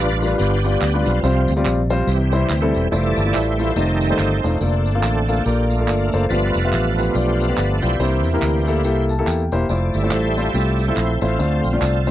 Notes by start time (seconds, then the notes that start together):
Already playing: A1 G2 G3 D4 F4 B4 D5
0.21 G3 D4 F4 A#4 B4, tambourine
0.27 B4
0.38 G1 B3 D4 G4, tambourine
0.64 G3 D4 F4 D5, tambourine
0.81 D2, clap, tambourine
0.94 G3 D4 F4 B4
1.05 B1 C4 F4, tambourine
1.23 C2 C3 F3 G3 C4 F4 C5, tambourine
1.48 D2, tambourine
1.57 G3 C4 F4 D5
1.65 A#1, clap, tambourine
1.90 G3 C4 F4 C5, tambourine
2.07 C2 C3 E3 G3 C4, tambourine
2.32 G3 C4 E4 C5, tambourine
2.50 D2, clap, tambourine
2.62 G3 C4 E4 A4
2.75 E1, tambourine
2.91 F1 E3 G3 A3 E4 F4 A4 C5 D5, tambourine
3.17 G1, tambourine
3.26 A3 E4 F4 D5
3.34 A1 E4 A4 C5, clap, tambourine
3.59 A3 E4 F4 A4, tambourine
3.76 F1 D#3 G3 A3 C4 D#4 F4 A4 C5, tambourine
4.01 tambourine
4.10 A3 D#4 F4 A4 C5
4.18 G1, clap, tambourine
4.43 E1 A3 D4 D#4 F4 A4 C5, tambourine
4.60 F1 D3 A3 A#3 C4 F4 A4 D5, tambourine
4.86 G1, tambourine
4.95 A#3 F4 A4 F5
5.02 A1 D4 A4, clap, tambourine
5.28 D3 A3 A#3 C4 F4 A4 F5, tambourine
5.45 A#1 A#3 D4 F4 G4 A4 D5, tambourine
5.70 A3 D4 F4, tambourine
5.80 A#3 F4 A4 D5
5.88 G1, clap, tambourine
6.13 F#1 A#3 F4 A4 C5, tambourine
6.29 G1 G2 F3 A3 B3 F4 G4 B4 D5, tambourine
6.55 F1, tambourine
6.64 B3 F4 G4 E5
6.71 A1 D4 F4 B4, clap, tambourine
6.98 B3 F4 G4 B4, tambourine
7.15 B1 B3 D4 F4 G4 D5, tambourine
7.40 tambourine
7.49 B3 F4 G4 B4 D5
7.57 G1 B4, clap, tambourine
7.82 B1 B3 E4 F4 G4 C5 D5, tambourine
7.99 C2 C3 E3 A#3 D4 E4 G4 C5, tambourine
8.24 E2, tambourine
8.34 A#3 E4 G4 A#4
8.42 D2, clap, tambourine
8.67 E3 A#3 D4 E4 G4 A4, tambourine
8.84 C2 A#3 E4 G4 A4, tambourine
9.09 A5, tambourine
9.19 A#3 E4 G4 A4
9.27 E2 G5, clap, tambourine
9.52 E1 A#3 E4 G4 C5 G5, tambourine
9.69 F1 A3 E4 F4 A4 C5 D5, tambourine
9.94 G1 G3 A3 E4, tambourine
10.04 A3 E4 F4 C5
10.11 A1 E4 A4 C5, clap, tambourine
10.37 A3 E4 F4 C5, tambourine
10.54 C2 A3 C4 E4 F4 G4 A4, tambourine
10.79 G3 A3 E4, tambourine
10.88 A3 E4 F4 A4 C5
10.97 A#1, clap, tambourine
11.21 A1 A3 C4 E4 F4 A4 C5, tambourine
11.39 D2 D3 A3 D4 F4 C5, tambourine
11.64 A#1, tambourine
11.73 A3 D4 F4 D5
11.81 C2 C4 F4 A4, clap, tambourine
12.06 F3 A3 C4 D4 E4 F4 C5, tambourine